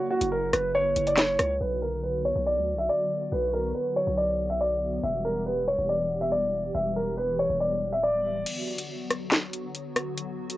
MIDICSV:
0, 0, Header, 1, 5, 480
1, 0, Start_track
1, 0, Key_signature, 2, "minor"
1, 0, Tempo, 428571
1, 1798, Time_signature, 4, 2, 24, 8
1, 11842, End_track
2, 0, Start_track
2, 0, Title_t, "Grand piano"
2, 0, Program_c, 0, 0
2, 118, Note_on_c, 0, 66, 83
2, 304, Note_off_c, 0, 66, 0
2, 356, Note_on_c, 0, 70, 75
2, 543, Note_off_c, 0, 70, 0
2, 596, Note_on_c, 0, 71, 78
2, 783, Note_off_c, 0, 71, 0
2, 837, Note_on_c, 0, 73, 85
2, 1176, Note_off_c, 0, 73, 0
2, 1199, Note_on_c, 0, 74, 76
2, 1291, Note_off_c, 0, 74, 0
2, 1319, Note_on_c, 0, 73, 90
2, 1769, Note_off_c, 0, 73, 0
2, 1800, Note_on_c, 0, 71, 83
2, 1985, Note_off_c, 0, 71, 0
2, 2038, Note_on_c, 0, 70, 75
2, 2224, Note_off_c, 0, 70, 0
2, 2278, Note_on_c, 0, 71, 70
2, 2464, Note_off_c, 0, 71, 0
2, 2519, Note_on_c, 0, 73, 77
2, 2705, Note_off_c, 0, 73, 0
2, 2760, Note_on_c, 0, 74, 88
2, 3097, Note_off_c, 0, 74, 0
2, 3117, Note_on_c, 0, 76, 76
2, 3210, Note_off_c, 0, 76, 0
2, 3239, Note_on_c, 0, 74, 93
2, 3689, Note_off_c, 0, 74, 0
2, 3718, Note_on_c, 0, 71, 80
2, 3904, Note_off_c, 0, 71, 0
2, 3958, Note_on_c, 0, 70, 77
2, 4144, Note_off_c, 0, 70, 0
2, 4198, Note_on_c, 0, 71, 74
2, 4384, Note_off_c, 0, 71, 0
2, 4438, Note_on_c, 0, 73, 77
2, 4624, Note_off_c, 0, 73, 0
2, 4675, Note_on_c, 0, 74, 86
2, 5014, Note_off_c, 0, 74, 0
2, 5038, Note_on_c, 0, 76, 75
2, 5131, Note_off_c, 0, 76, 0
2, 5160, Note_on_c, 0, 74, 86
2, 5610, Note_off_c, 0, 74, 0
2, 5639, Note_on_c, 0, 76, 79
2, 5825, Note_off_c, 0, 76, 0
2, 5877, Note_on_c, 0, 70, 78
2, 6063, Note_off_c, 0, 70, 0
2, 6116, Note_on_c, 0, 71, 73
2, 6303, Note_off_c, 0, 71, 0
2, 6358, Note_on_c, 0, 73, 79
2, 6544, Note_off_c, 0, 73, 0
2, 6597, Note_on_c, 0, 74, 79
2, 6935, Note_off_c, 0, 74, 0
2, 6956, Note_on_c, 0, 76, 76
2, 7050, Note_off_c, 0, 76, 0
2, 7075, Note_on_c, 0, 74, 86
2, 7527, Note_off_c, 0, 74, 0
2, 7556, Note_on_c, 0, 76, 81
2, 7743, Note_off_c, 0, 76, 0
2, 7797, Note_on_c, 0, 70, 75
2, 7984, Note_off_c, 0, 70, 0
2, 8034, Note_on_c, 0, 71, 79
2, 8222, Note_off_c, 0, 71, 0
2, 8277, Note_on_c, 0, 73, 79
2, 8464, Note_off_c, 0, 73, 0
2, 8516, Note_on_c, 0, 74, 76
2, 8855, Note_off_c, 0, 74, 0
2, 8877, Note_on_c, 0, 76, 81
2, 8970, Note_off_c, 0, 76, 0
2, 8997, Note_on_c, 0, 74, 92
2, 9448, Note_off_c, 0, 74, 0
2, 11842, End_track
3, 0, Start_track
3, 0, Title_t, "Analog synth pad"
3, 0, Program_c, 1, 89
3, 0, Note_on_c, 1, 49, 84
3, 0, Note_on_c, 1, 54, 82
3, 0, Note_on_c, 1, 58, 77
3, 0, Note_on_c, 1, 64, 94
3, 1752, Note_off_c, 1, 49, 0
3, 1752, Note_off_c, 1, 58, 0
3, 1753, Note_off_c, 1, 54, 0
3, 1758, Note_off_c, 1, 64, 0
3, 1795, Note_on_c, 1, 59, 77
3, 1796, Note_on_c, 1, 50, 85
3, 1796, Note_on_c, 1, 66, 90
3, 1797, Note_on_c, 1, 54, 75
3, 5598, Note_off_c, 1, 50, 0
3, 5598, Note_off_c, 1, 54, 0
3, 5598, Note_off_c, 1, 66, 0
3, 5636, Note_on_c, 1, 55, 76
3, 5637, Note_on_c, 1, 52, 80
3, 5637, Note_on_c, 1, 67, 91
3, 9431, Note_off_c, 1, 59, 0
3, 9438, Note_off_c, 1, 55, 0
3, 9438, Note_off_c, 1, 67, 0
3, 9439, Note_off_c, 1, 52, 0
3, 9478, Note_on_c, 1, 50, 82
3, 9478, Note_on_c, 1, 54, 76
3, 9478, Note_on_c, 1, 59, 78
3, 9478, Note_on_c, 1, 66, 92
3, 11842, Note_off_c, 1, 50, 0
3, 11842, Note_off_c, 1, 54, 0
3, 11842, Note_off_c, 1, 59, 0
3, 11842, Note_off_c, 1, 66, 0
3, 11842, End_track
4, 0, Start_track
4, 0, Title_t, "808-style bass"
4, 0, Program_c, 2, 38
4, 237, Note_on_c, 2, 30, 101
4, 583, Note_off_c, 2, 30, 0
4, 597, Note_on_c, 2, 30, 106
4, 1058, Note_off_c, 2, 30, 0
4, 1077, Note_on_c, 2, 30, 102
4, 1538, Note_off_c, 2, 30, 0
4, 1558, Note_on_c, 2, 37, 108
4, 1788, Note_off_c, 2, 37, 0
4, 1798, Note_on_c, 2, 35, 112
4, 2604, Note_off_c, 2, 35, 0
4, 2637, Note_on_c, 2, 35, 108
4, 2878, Note_on_c, 2, 38, 100
4, 2895, Note_off_c, 2, 35, 0
4, 3058, Note_on_c, 2, 35, 94
4, 3075, Note_off_c, 2, 38, 0
4, 3229, Note_off_c, 2, 35, 0
4, 3717, Note_on_c, 2, 35, 109
4, 4178, Note_off_c, 2, 35, 0
4, 4558, Note_on_c, 2, 35, 105
4, 5594, Note_off_c, 2, 35, 0
4, 5638, Note_on_c, 2, 28, 107
4, 6444, Note_off_c, 2, 28, 0
4, 6478, Note_on_c, 2, 28, 102
4, 7514, Note_off_c, 2, 28, 0
4, 7557, Note_on_c, 2, 28, 110
4, 8363, Note_off_c, 2, 28, 0
4, 8395, Note_on_c, 2, 28, 106
4, 8876, Note_on_c, 2, 26, 99
4, 8893, Note_off_c, 2, 28, 0
4, 9447, Note_off_c, 2, 26, 0
4, 11842, End_track
5, 0, Start_track
5, 0, Title_t, "Drums"
5, 237, Note_on_c, 9, 42, 78
5, 349, Note_off_c, 9, 42, 0
5, 597, Note_on_c, 9, 37, 99
5, 597, Note_on_c, 9, 42, 78
5, 709, Note_off_c, 9, 37, 0
5, 709, Note_off_c, 9, 42, 0
5, 1077, Note_on_c, 9, 42, 79
5, 1189, Note_off_c, 9, 42, 0
5, 1197, Note_on_c, 9, 42, 49
5, 1309, Note_off_c, 9, 42, 0
5, 1314, Note_on_c, 9, 39, 95
5, 1317, Note_on_c, 9, 38, 119
5, 1317, Note_on_c, 9, 42, 78
5, 1426, Note_off_c, 9, 39, 0
5, 1429, Note_off_c, 9, 38, 0
5, 1429, Note_off_c, 9, 42, 0
5, 1558, Note_on_c, 9, 37, 101
5, 1558, Note_on_c, 9, 42, 78
5, 1670, Note_off_c, 9, 37, 0
5, 1670, Note_off_c, 9, 42, 0
5, 9477, Note_on_c, 9, 42, 83
5, 9477, Note_on_c, 9, 49, 95
5, 9589, Note_off_c, 9, 42, 0
5, 9589, Note_off_c, 9, 49, 0
5, 9837, Note_on_c, 9, 42, 78
5, 9949, Note_off_c, 9, 42, 0
5, 10198, Note_on_c, 9, 37, 91
5, 10198, Note_on_c, 9, 42, 76
5, 10310, Note_off_c, 9, 37, 0
5, 10310, Note_off_c, 9, 42, 0
5, 10435, Note_on_c, 9, 39, 91
5, 10437, Note_on_c, 9, 42, 76
5, 10438, Note_on_c, 9, 38, 116
5, 10547, Note_off_c, 9, 39, 0
5, 10549, Note_off_c, 9, 42, 0
5, 10550, Note_off_c, 9, 38, 0
5, 10677, Note_on_c, 9, 42, 80
5, 10789, Note_off_c, 9, 42, 0
5, 10916, Note_on_c, 9, 42, 72
5, 11028, Note_off_c, 9, 42, 0
5, 11156, Note_on_c, 9, 42, 76
5, 11157, Note_on_c, 9, 37, 98
5, 11268, Note_off_c, 9, 42, 0
5, 11269, Note_off_c, 9, 37, 0
5, 11396, Note_on_c, 9, 42, 84
5, 11508, Note_off_c, 9, 42, 0
5, 11758, Note_on_c, 9, 42, 80
5, 11842, Note_off_c, 9, 42, 0
5, 11842, End_track
0, 0, End_of_file